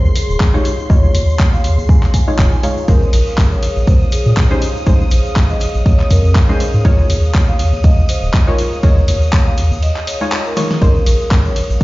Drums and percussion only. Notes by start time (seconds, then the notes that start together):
0.05 shaker
0.16 open hi-hat, shaker
0.30 shaker
0.40 kick, clap
0.54 shaker
0.65 open hi-hat, shaker
0.79 shaker
0.90 kick, shaker
1.04 shaker
1.15 open hi-hat, shaker
1.29 shaker
1.39 kick, clap, shaker
1.54 shaker
1.64 open hi-hat, shaker
1.79 shaker
1.89 kick, shaker
2.03 clap, shaker
2.14 kick, open hi-hat, shaker
2.27 shaker
2.39 kick, clap, shaker
2.53 shaker
2.63 open hi-hat, shaker
2.77 shaker
2.88 kick, ride, shaker
3.02 shaker
3.13 open hi-hat, ride, shaker
3.27 shaker
3.38 kick, clap, ride, shaker
3.52 shaker
3.63 open hi-hat, ride, shaker
3.76 shaker
3.87 kick, ride, shaker
4.01 shaker
4.12 open hi-hat, ride, shaker
4.26 shaker
4.37 kick, clap, ride, shaker
4.50 shaker
4.62 open hi-hat, ride, shaker
4.76 shaker
4.86 kick, ride, shaker
5.01 shaker
5.11 open hi-hat, ride, shaker
5.25 shaker
5.36 kick, clap, ride, shaker
5.50 shaker
5.61 open hi-hat, ride, shaker
5.74 shaker
5.86 kick, ride, shaker
5.99 clap, shaker
6.10 kick, open hi-hat, ride, shaker
6.25 shaker
6.35 kick, clap, ride, shaker
6.49 shaker
6.60 open hi-hat, ride, shaker
6.73 shaker
6.85 kick, ride, shaker
6.99 shaker
7.10 open hi-hat, ride, shaker
7.24 shaker
7.34 kick, clap, ride, shaker
7.48 shaker
7.59 open hi-hat, ride, shaker
7.73 shaker
7.84 kick, ride, shaker
7.98 shaker
8.09 open hi-hat, ride, shaker
8.23 shaker
8.34 kick, clap, ride, shaker
8.48 shaker
8.59 open hi-hat, ride, shaker
8.72 shaker
8.83 kick, ride, shaker
8.97 shaker
9.08 open hi-hat, ride, shaker
9.21 shaker
9.32 kick, clap, ride, shaker
9.47 shaker
9.58 open hi-hat, ride, shaker
9.71 shaker
9.83 ride, shaker
9.96 clap, shaker
10.07 open hi-hat, ride, shaker
10.21 shaker
10.32 clap, ride, shaker
10.46 shaker
10.57 snare, open hi-hat, ride, shaker
10.71 snare, shaker
10.82 kick, ride, shaker
10.95 shaker
11.06 open hi-hat, ride, shaker
11.20 shaker
11.31 kick, clap, ride, shaker
11.45 shaker
11.56 open hi-hat, ride, shaker
11.70 shaker